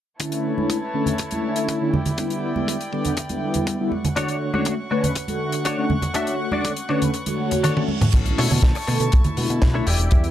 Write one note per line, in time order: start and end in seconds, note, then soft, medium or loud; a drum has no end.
0.19 0.54 D3 medium
0.19 0.54 A3 medium
0.19 0.54 C#4 medium
0.19 3.88 E4 medium
0.19 0.55 E4 medium
0.19 1.92 B4 medium
0.19 1.92 C#5 medium
0.19 1.92 A5 medium
0.19 kick medium
0.19 closed hi-hat medium
0.32 closed hi-hat medium
0.57 0.78 D3 medium
0.57 0.78 A3 medium
0.57 0.78 C#4 medium
0.57 0.78 E4 medium
0.57 high conga medium
0.70 kick loud
0.70 closed hi-hat medium
0.94 1.15 D3 medium
0.94 1.15 A3 medium
0.94 1.15 C#4 medium
0.94 1.15 A4 loud
1.06 closed hi-hat medium
1.06 low conga medium
1.18 kick loud
1.18 closed hi-hat medium
1.31 1.78 D3 medium
1.31 1.78 A3 medium
1.31 1.79 C#4 medium
1.31 1.79 E4 medium
1.31 closed hi-hat soft
1.31 high conga medium
1.56 closed hi-hat medium
1.68 kick loud
1.68 closed hi-hat medium
1.81 1.92 D3 medium
1.81 1.92 A3 medium
1.81 1.92 C#4 medium
1.81 1.92 E4 medium
1.94 3.90 D5 medium
1.94 3.90 G5 medium
1.94 high conga medium
1.94 low conga medium
2.06 closed hi-hat medium
2.06 low conga medium
2.18 2.53 D3 medium
2.18 2.53 G3 medium
2.18 2.53 B3 medium
2.18 2.53 E4 medium
2.18 kick loud
2.18 closed hi-hat medium
2.30 closed hi-hat medium
2.56 2.76 D3 medium
2.56 2.76 G3 medium
2.56 2.77 B3 medium
2.56 2.77 E4 medium
2.56 high conga medium
2.68 kick loud
2.68 closed hi-hat medium
2.81 closed hi-hat soft
2.92 3.13 D3 medium
2.92 3.13 G3 medium
2.92 3.14 B3 medium
2.92 3.14 G4 loud
2.92 kick medium
3.05 closed hi-hat medium
3.05 low conga medium
3.17 kick loud
3.17 closed hi-hat medium
3.29 3.77 D3 medium
3.29 3.77 G3 medium
3.29 3.77 B3 medium
3.29 3.77 E4 medium
3.29 closed hi-hat soft
3.29 high conga medium
3.54 closed hi-hat medium
3.54 low conga medium
3.67 kick loud
3.67 closed hi-hat medium
3.80 3.91 D3 medium
3.80 3.91 G3 medium
3.80 3.91 B3 medium
3.80 3.91 E4 medium
3.92 8.09 F#5 medium
3.92 8.10 C#6 medium
3.92 high conga medium
4.05 closed hi-hat soft
4.05 low conga medium
4.16 4.51 D3 medium
4.16 4.51 A3 medium
4.16 4.35 D4 loud
4.16 4.35 F#4 medium
4.16 4.51 F#4 medium
4.16 4.36 C#5 loud
4.16 4.51 C#5 medium
4.16 kick loud
4.16 closed hi-hat medium
4.28 closed hi-hat soft
4.54 4.75 D3 medium
4.54 4.75 A3 medium
4.54 4.75 C#4 medium
4.54 4.72 D4 medium
4.54 4.73 F#4 medium
4.54 4.75 F#4 medium
4.54 4.73 C#5 medium
4.54 high conga medium
4.65 kick loud
4.65 closed hi-hat medium
4.91 5.12 D3 medium
4.91 5.12 A3 medium
4.91 5.12 C#4 medium
4.91 5.03 D4 medium
4.91 5.04 F#4 medium
4.91 5.12 B4 loud
4.91 5.04 C#5 medium
5.04 closed hi-hat medium
5.04 low conga medium
5.15 muted clean electric guitar stroke soft
5.15 kick loud
5.15 closed hi-hat medium
5.28 5.75 D3 medium
5.28 5.75 A3 medium
5.28 5.76 F#4 medium
5.28 closed hi-hat soft
5.28 high conga medium
5.52 muted clean electric guitar stroke soft
5.52 closed hi-hat medium
5.65 5.84 D4 medium
5.65 5.84 F#4 medium
5.65 5.84 C#5 medium
5.65 kick loud
5.65 closed hi-hat medium
5.78 5.91 D3 medium
5.78 5.91 A3 medium
5.78 5.91 C#4 medium
5.78 5.91 F#4 medium
5.90 high conga loud
5.90 low conga medium
6.02 muted clean electric guitar stroke soft
6.02 closed hi-hat soft
6.02 low conga medium
6.14 6.49 D3 medium
6.14 6.50 A3 medium
6.14 6.34 D4 loud
6.14 6.34 F#4 medium
6.14 6.50 F#4 medium
6.14 6.50 C#5 medium
6.14 6.34 E5 loud
6.14 kick loud
6.14 closed hi-hat medium
6.27 closed hi-hat medium
6.52 6.73 D3 medium
6.52 6.73 A3 medium
6.52 6.73 C#4 medium
6.52 6.71 D4 medium
6.52 6.71 F#4 medium
6.52 6.74 F#4 medium
6.52 6.71 D5 medium
6.52 high conga medium
6.65 kick loud
6.65 closed hi-hat medium
6.77 closed hi-hat soft
6.89 7.10 D3 medium
6.89 7.10 A3 medium
6.89 7.11 C#4 medium
6.89 7.02 D4 medium
6.89 7.02 F#4 medium
6.89 7.11 B4 loud
6.89 7.02 C#5 medium
6.89 kick medium
7.02 closed hi-hat medium
7.02 low conga medium
7.14 muted clean electric guitar stroke soft
7.14 closed hi-hat medium
7.14 reverse cymbal medium
7.26 7.73 D3 medium
7.26 7.74 A3 medium
7.26 7.74 F#4 medium
7.26 7.74 C#5 medium
7.26 closed hi-hat soft
7.26 high conga medium
7.51 muted clean electric guitar stroke soft
7.51 closed hi-hat medium
7.51 low conga medium
7.63 7.82 D4 medium
7.63 7.83 F#4 medium
7.63 7.83 C#5 medium
7.63 closed hi-hat medium
7.63 high tom medium
7.76 7.89 D3 medium
7.76 7.89 A3 medium
7.76 7.89 C#4 medium
7.76 7.90 F#4 loud
7.76 high tom medium
7.88 high conga medium
8.01 muted clean electric guitar stroke soft
8.01 closed hi-hat soft
8.01 mid tom medium
8.01 low conga medium
8.13 8.33 B1 medium
8.13 8.48 D3 medium
8.13 8.48 A3 medium
8.13 8.48 C#4 medium
8.13 10.31 E4 medium
8.13 8.48 E4 medium
8.13 9.85 A5 medium
8.13 9.85 C#6 medium
8.13 kick loud
8.13 closed hi-hat medium
8.13 crash loud
8.26 closed hi-hat medium
8.38 8.48 B2 medium
8.38 8.51 D4 medium
8.38 8.51 E4 medium
8.38 8.51 A4 medium
8.38 8.51 C#5 loud
8.38 open hi-hat loud
8.38 high conga medium
8.50 8.60 B2 loud
8.50 8.71 D3 medium
8.50 8.71 A3 medium
8.50 8.72 C#4 medium
8.50 8.72 E4 medium
8.50 low conga medium
8.63 8.72 B1 medium
8.63 muted clean electric guitar stroke soft
8.63 kick loud
8.63 snare loud
8.75 muted clean electric guitar stroke medium
8.75 open hi-hat medium
8.87 8.97 B2 medium
8.87 9.08 D3 medium
8.87 9.08 A3 medium
8.87 9.09 C#4 medium
8.87 9.09 A4 loud
8.87 muted clean electric guitar stroke loud
8.87 open hi-hat loud
9.00 9.10 B2 medium
9.00 muted clean electric guitar stroke soft
9.00 closed hi-hat medium
9.12 9.23 B1 medium
9.12 kick loud
9.12 closed hi-hat medium
9.24 9.71 D3 medium
9.24 9.72 A3 medium
9.24 9.72 E4 medium
9.24 closed hi-hat medium
9.24 low conga medium
9.37 9.47 B2 medium
9.37 open hi-hat loud
9.37 high conga medium
9.50 9.59 B2 loud
9.50 closed hi-hat medium
9.62 9.81 B1 loud
9.62 kick loud
9.62 snare loud
9.62 closed hi-hat medium
9.74 9.85 D3 medium
9.74 9.86 A3 medium
9.74 9.86 C#4 medium
9.74 9.87 D4 medium
9.74 9.85 E4 medium
9.74 9.86 E4 loud
9.74 9.86 A4 medium
9.74 9.87 C#5 medium
9.86 9.96 E1 loud
9.86 10.26 E4 medium
9.86 10.27 G4 medium
9.86 10.27 D5 medium
9.86 10.31 G5 medium
9.86 open hi-hat loud
9.99 10.09 E1 medium
9.99 closed hi-hat soft
10.11 10.31 E2 loud
10.11 10.31 D3 medium
10.11 10.31 G3 medium
10.11 10.31 B3 medium
10.11 10.31 E4 medium
10.11 kick loud
10.11 closed hi-hat medium
10.24 closed hi-hat medium